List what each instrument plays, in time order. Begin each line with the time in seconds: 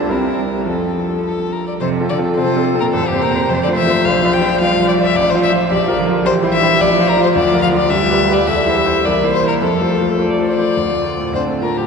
Already playing: grand piano C2 C4 F4 A4, cello D4, violin C5
0.08 grand piano C2 C4 E4 A#4, cello C4, viola G4, violin A#4
0.39 cello G3
0.65 grand piano F2 C4 F4 A4, cello F3, violin A4, viola A4
1.24 violin A4
1.52 violin A#4
1.67 violin D5
1.80 grand piano F2, cello C3, viola A4, violin C5
2.00 grand piano C4 F4 A4
2.09 cello D3, violin D5
2.18 grand piano C4 F4 A4
2.37 cello C3, grand piano C4 F4 A4, violin C5
2.56 grand piano C4 F4 A4
2.74 grand piano C4 F4 A4
2.80 cello A#2, violin A#4
2.93 grand piano E2, cello A2, violin A4, viola C5
3.08 cello G2, grand piano C4, violin G4
3.12 grand piano G4 C5
3.21 cello A#2, violin A#4
3.30 grand piano C4 G4 C5
3.49 grand piano F2, cello C3, violin C5
3.63 cello D3, violin D5
3.68 grand piano A3 F4 C5
3.77 cello E3, violin E5
3.87 grand piano A3 F4 C5
4.05 grand piano A#1, cello F3, violin F5
4.23 grand piano F3 F4 D5
4.33 violin G5
4.42 grand piano F3 F4 D5
4.61 grand piano F3 F4 D5, cello G3, violin F5
4.79 grand piano F3 F4 D5
4.88 violin D5
4.98 grand piano F3 F4 D5
5.03 violin E5
5.15 grand piano A1, cello F3, viola F4, violin D5
5.30 violin C5
5.34 grand piano F3 F4 C5
5.43 violin E5
5.52 grand piano F3 F4 C5
5.70 grand piano A#1, cello F3, viola G4, violin D5
5.88 grand piano F3 F4 A#4
5.98 cello D3, viola F4
6.06 grand piano F3 F4 A#4
6.24 grand piano A#1, cello E3, viola G4, violin C5
6.43 grand piano G3 E4 C5
6.54 violin E5
6.62 grand piano G3 E4 C5
6.80 grand piano A1, cello F3, viola F4, violin D5
6.99 grand piano F3 F4 C5
7.09 violin A#4
7.17 grand piano F3 F4 C5
7.23 violin C5
7.35 grand piano D2, cello F3, violin D5
7.54 grand piano F3 F4 A#4
7.62 violin F5
7.72 grand piano F3 F4 A#4
7.78 violin D5
7.89 grand piano D2, cello G3, viola G4, violin E5
8.09 grand piano G3 F4 B4
8.28 grand piano G3 F4 B4
8.33 violin D5
8.45 grand piano E2, cello E3, viola A4, violin E5
8.66 grand piano G3 E4 C5
8.76 viola G4
8.86 grand piano G3 E4 C5
9.04 grand piano C2, cello E3, viola A#4, violin D5
9.23 grand piano A#3 E4 C5
9.33 violin C5
9.43 grand piano A#3 E4 C5
9.48 violin A#4
9.61 grand piano F2, cello F3, violin A4, viola A4
9.80 grand piano A3 F4 C5
10.00 grand piano A3 F4 C5
10.19 grand piano A3 F4 C5, viola D5
10.38 grand piano A3 F4 C5
10.49 viola C5, violin D5
10.58 grand piano A3 F4 C5
10.77 grand piano D2, cello F4
10.91 grand piano A3
11.05 grand piano F4
11.20 grand piano A2
11.33 grand piano D2, viola C4, cello D4, violin C5
11.48 grand piano A3
11.62 viola A#3, grand piano F4, violin A#4
11.76 grand piano A2, viola G3, violin G4